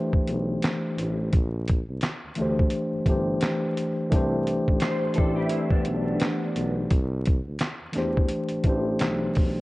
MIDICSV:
0, 0, Header, 1, 5, 480
1, 0, Start_track
1, 0, Key_signature, 0, "major"
1, 0, Tempo, 697674
1, 914, Time_signature, 4, 2, 24, 8
1, 6612, End_track
2, 0, Start_track
2, 0, Title_t, "Clean electric guitar"
2, 0, Program_c, 0, 27
2, 3312, Note_on_c, 0, 72, 77
2, 3317, Note_on_c, 0, 69, 58
2, 3539, Note_off_c, 0, 69, 0
2, 3541, Note_off_c, 0, 72, 0
2, 3548, Note_on_c, 0, 69, 85
2, 3682, Note_off_c, 0, 69, 0
2, 3687, Note_on_c, 0, 67, 90
2, 3692, Note_on_c, 0, 64, 74
2, 3775, Note_off_c, 0, 64, 0
2, 3780, Note_off_c, 0, 67, 0
2, 3783, Note_on_c, 0, 64, 89
2, 3791, Note_on_c, 0, 60, 71
2, 3920, Note_off_c, 0, 64, 0
2, 3924, Note_off_c, 0, 60, 0
2, 3929, Note_on_c, 0, 62, 73
2, 3932, Note_on_c, 0, 59, 61
2, 4623, Note_off_c, 0, 62, 0
2, 4625, Note_off_c, 0, 59, 0
2, 6612, End_track
3, 0, Start_track
3, 0, Title_t, "Tine electric piano"
3, 0, Program_c, 1, 4
3, 0, Control_c, 1, 64, 127
3, 0, Note_on_c, 1, 52, 84
3, 0, Note_on_c, 1, 57, 75
3, 0, Note_on_c, 1, 62, 76
3, 0, Note_on_c, 1, 67, 66
3, 0, Note_on_c, 1, 72, 85
3, 416, Note_off_c, 1, 52, 0
3, 421, Note_off_c, 1, 57, 0
3, 426, Note_off_c, 1, 62, 0
3, 432, Note_off_c, 1, 67, 0
3, 436, Note_off_c, 1, 72, 0
3, 923, Control_c, 1, 64, 0
3, 1043, Control_c, 1, 64, 127
3, 1623, Note_on_c, 1, 52, 78
3, 1633, Note_on_c, 1, 57, 88
3, 1641, Note_on_c, 1, 62, 81
3, 1653, Note_on_c, 1, 67, 73
3, 1662, Note_on_c, 1, 72, 91
3, 2001, Note_off_c, 1, 52, 0
3, 2006, Note_off_c, 1, 57, 0
3, 2010, Note_off_c, 1, 62, 0
3, 2016, Note_off_c, 1, 67, 0
3, 2020, Note_off_c, 1, 72, 0
3, 2103, Note_on_c, 1, 52, 90
3, 2113, Note_on_c, 1, 57, 74
3, 2123, Note_on_c, 1, 62, 72
3, 2132, Note_on_c, 1, 67, 86
3, 2142, Note_on_c, 1, 72, 91
3, 2649, Note_off_c, 1, 52, 0
3, 2654, Note_off_c, 1, 57, 0
3, 2659, Note_off_c, 1, 62, 0
3, 2663, Note_off_c, 1, 67, 0
3, 2668, Note_off_c, 1, 72, 0
3, 2820, Note_on_c, 1, 52, 92
3, 2831, Note_on_c, 1, 57, 99
3, 2839, Note_on_c, 1, 62, 104
3, 2843, Control_c, 1, 64, 0
3, 2849, Note_on_c, 1, 67, 98
3, 2861, Note_on_c, 1, 72, 125
3, 2955, Control_c, 1, 64, 127
3, 3367, Note_off_c, 1, 52, 0
3, 3373, Note_off_c, 1, 57, 0
3, 3377, Note_off_c, 1, 62, 0
3, 3382, Note_off_c, 1, 67, 0
3, 3388, Note_off_c, 1, 72, 0
3, 3540, Note_on_c, 1, 52, 90
3, 3551, Note_on_c, 1, 57, 80
3, 3562, Note_on_c, 1, 62, 73
3, 3572, Note_on_c, 1, 67, 84
3, 3580, Note_on_c, 1, 74, 89
3, 4258, Note_off_c, 1, 52, 0
3, 4264, Note_off_c, 1, 57, 0
3, 4269, Note_off_c, 1, 62, 0
3, 4274, Note_off_c, 1, 67, 0
3, 4278, Note_off_c, 1, 74, 0
3, 4762, Control_c, 1, 64, 0
3, 4868, Control_c, 1, 64, 127
3, 5451, Note_on_c, 1, 52, 74
3, 5460, Note_on_c, 1, 57, 73
3, 5471, Note_on_c, 1, 62, 81
3, 5483, Note_on_c, 1, 67, 76
3, 5490, Note_on_c, 1, 72, 96
3, 5835, Note_off_c, 1, 52, 0
3, 5839, Note_off_c, 1, 57, 0
3, 5845, Note_off_c, 1, 62, 0
3, 5851, Note_off_c, 1, 67, 0
3, 5854, Note_off_c, 1, 72, 0
3, 5939, Note_on_c, 1, 52, 75
3, 5948, Note_on_c, 1, 57, 77
3, 5959, Note_on_c, 1, 62, 83
3, 5966, Note_on_c, 1, 67, 68
3, 5978, Note_on_c, 1, 72, 91
3, 6487, Note_off_c, 1, 52, 0
3, 6491, Note_off_c, 1, 57, 0
3, 6497, Note_off_c, 1, 62, 0
3, 6500, Note_off_c, 1, 67, 0
3, 6506, Note_off_c, 1, 72, 0
3, 6612, End_track
4, 0, Start_track
4, 0, Title_t, "Tuba"
4, 0, Program_c, 2, 58
4, 196, Note_on_c, 2, 35, 91
4, 403, Note_off_c, 2, 35, 0
4, 676, Note_on_c, 2, 33, 89
4, 883, Note_off_c, 2, 33, 0
4, 917, Note_on_c, 2, 34, 102
4, 1244, Note_off_c, 2, 34, 0
4, 1297, Note_on_c, 2, 36, 77
4, 1383, Note_off_c, 2, 36, 0
4, 1539, Note_on_c, 2, 38, 50
4, 1578, Note_off_c, 2, 38, 0
4, 1637, Note_on_c, 2, 38, 97
4, 1844, Note_off_c, 2, 38, 0
4, 2017, Note_on_c, 2, 31, 48
4, 2057, Note_off_c, 2, 31, 0
4, 2107, Note_on_c, 2, 31, 90
4, 2318, Note_off_c, 2, 31, 0
4, 2837, Note_on_c, 2, 36, 105
4, 3164, Note_off_c, 2, 36, 0
4, 3223, Note_on_c, 2, 33, 85
4, 3306, Note_off_c, 2, 33, 0
4, 3456, Note_on_c, 2, 33, 47
4, 3496, Note_off_c, 2, 33, 0
4, 3567, Note_on_c, 2, 33, 86
4, 3770, Note_off_c, 2, 33, 0
4, 4035, Note_on_c, 2, 35, 96
4, 4243, Note_off_c, 2, 35, 0
4, 4515, Note_on_c, 2, 35, 100
4, 4723, Note_off_c, 2, 35, 0
4, 4755, Note_on_c, 2, 36, 119
4, 5083, Note_off_c, 2, 36, 0
4, 5134, Note_on_c, 2, 38, 85
4, 5222, Note_off_c, 2, 38, 0
4, 5373, Note_on_c, 2, 40, 45
4, 5414, Note_off_c, 2, 40, 0
4, 5476, Note_on_c, 2, 40, 86
4, 5683, Note_off_c, 2, 40, 0
4, 5856, Note_on_c, 2, 33, 48
4, 5895, Note_off_c, 2, 33, 0
4, 5944, Note_on_c, 2, 33, 105
4, 6157, Note_off_c, 2, 33, 0
4, 6194, Note_on_c, 2, 35, 80
4, 6402, Note_off_c, 2, 35, 0
4, 6446, Note_on_c, 2, 35, 79
4, 6612, Note_off_c, 2, 35, 0
4, 6612, End_track
5, 0, Start_track
5, 0, Title_t, "Drums"
5, 88, Note_on_c, 9, 36, 92
5, 157, Note_off_c, 9, 36, 0
5, 187, Note_on_c, 9, 42, 58
5, 255, Note_off_c, 9, 42, 0
5, 428, Note_on_c, 9, 42, 81
5, 440, Note_on_c, 9, 38, 115
5, 446, Note_on_c, 9, 39, 86
5, 497, Note_off_c, 9, 42, 0
5, 509, Note_off_c, 9, 38, 0
5, 515, Note_off_c, 9, 39, 0
5, 676, Note_on_c, 9, 42, 73
5, 745, Note_off_c, 9, 42, 0
5, 912, Note_on_c, 9, 42, 80
5, 915, Note_on_c, 9, 36, 110
5, 981, Note_off_c, 9, 42, 0
5, 984, Note_off_c, 9, 36, 0
5, 1152, Note_on_c, 9, 42, 67
5, 1165, Note_on_c, 9, 36, 85
5, 1221, Note_off_c, 9, 42, 0
5, 1234, Note_off_c, 9, 36, 0
5, 1382, Note_on_c, 9, 42, 83
5, 1395, Note_on_c, 9, 38, 120
5, 1401, Note_on_c, 9, 39, 99
5, 1450, Note_off_c, 9, 42, 0
5, 1464, Note_off_c, 9, 38, 0
5, 1470, Note_off_c, 9, 39, 0
5, 1619, Note_on_c, 9, 42, 61
5, 1687, Note_off_c, 9, 42, 0
5, 1784, Note_on_c, 9, 36, 96
5, 1853, Note_off_c, 9, 36, 0
5, 1859, Note_on_c, 9, 42, 83
5, 1928, Note_off_c, 9, 42, 0
5, 2105, Note_on_c, 9, 36, 84
5, 2107, Note_on_c, 9, 42, 61
5, 2174, Note_off_c, 9, 36, 0
5, 2176, Note_off_c, 9, 42, 0
5, 2345, Note_on_c, 9, 42, 89
5, 2358, Note_on_c, 9, 38, 119
5, 2364, Note_on_c, 9, 39, 90
5, 2414, Note_off_c, 9, 42, 0
5, 2426, Note_off_c, 9, 38, 0
5, 2433, Note_off_c, 9, 39, 0
5, 2596, Note_on_c, 9, 42, 73
5, 2665, Note_off_c, 9, 42, 0
5, 2834, Note_on_c, 9, 42, 88
5, 2835, Note_on_c, 9, 36, 106
5, 2903, Note_off_c, 9, 42, 0
5, 2904, Note_off_c, 9, 36, 0
5, 3076, Note_on_c, 9, 42, 72
5, 3145, Note_off_c, 9, 42, 0
5, 3221, Note_on_c, 9, 36, 81
5, 3289, Note_off_c, 9, 36, 0
5, 3304, Note_on_c, 9, 42, 87
5, 3317, Note_on_c, 9, 38, 120
5, 3323, Note_on_c, 9, 39, 97
5, 3372, Note_off_c, 9, 42, 0
5, 3385, Note_off_c, 9, 38, 0
5, 3392, Note_off_c, 9, 39, 0
5, 3537, Note_on_c, 9, 42, 61
5, 3566, Note_on_c, 9, 36, 91
5, 3606, Note_off_c, 9, 42, 0
5, 3635, Note_off_c, 9, 36, 0
5, 3780, Note_on_c, 9, 42, 86
5, 3849, Note_off_c, 9, 42, 0
5, 3925, Note_on_c, 9, 36, 90
5, 3994, Note_off_c, 9, 36, 0
5, 4024, Note_on_c, 9, 42, 64
5, 4093, Note_off_c, 9, 42, 0
5, 4264, Note_on_c, 9, 42, 84
5, 4276, Note_on_c, 9, 38, 115
5, 4282, Note_on_c, 9, 39, 86
5, 4333, Note_off_c, 9, 42, 0
5, 4345, Note_off_c, 9, 38, 0
5, 4351, Note_off_c, 9, 39, 0
5, 4513, Note_on_c, 9, 42, 79
5, 4582, Note_off_c, 9, 42, 0
5, 4751, Note_on_c, 9, 42, 83
5, 4754, Note_on_c, 9, 36, 104
5, 4819, Note_off_c, 9, 42, 0
5, 4822, Note_off_c, 9, 36, 0
5, 4991, Note_on_c, 9, 42, 63
5, 5004, Note_on_c, 9, 36, 92
5, 5059, Note_off_c, 9, 42, 0
5, 5072, Note_off_c, 9, 36, 0
5, 5220, Note_on_c, 9, 42, 86
5, 5233, Note_on_c, 9, 38, 120
5, 5239, Note_on_c, 9, 39, 100
5, 5289, Note_off_c, 9, 42, 0
5, 5302, Note_off_c, 9, 38, 0
5, 5308, Note_off_c, 9, 39, 0
5, 5456, Note_on_c, 9, 42, 65
5, 5476, Note_on_c, 9, 38, 34
5, 5525, Note_off_c, 9, 42, 0
5, 5544, Note_off_c, 9, 38, 0
5, 5622, Note_on_c, 9, 36, 93
5, 5690, Note_off_c, 9, 36, 0
5, 5699, Note_on_c, 9, 42, 86
5, 5768, Note_off_c, 9, 42, 0
5, 5837, Note_on_c, 9, 42, 47
5, 5905, Note_off_c, 9, 42, 0
5, 5940, Note_on_c, 9, 42, 62
5, 5943, Note_on_c, 9, 36, 82
5, 6009, Note_off_c, 9, 42, 0
5, 6012, Note_off_c, 9, 36, 0
5, 6185, Note_on_c, 9, 42, 84
5, 6197, Note_on_c, 9, 38, 102
5, 6203, Note_on_c, 9, 39, 88
5, 6254, Note_off_c, 9, 42, 0
5, 6266, Note_off_c, 9, 38, 0
5, 6272, Note_off_c, 9, 39, 0
5, 6434, Note_on_c, 9, 46, 51
5, 6445, Note_on_c, 9, 36, 96
5, 6502, Note_off_c, 9, 46, 0
5, 6514, Note_off_c, 9, 36, 0
5, 6612, End_track
0, 0, End_of_file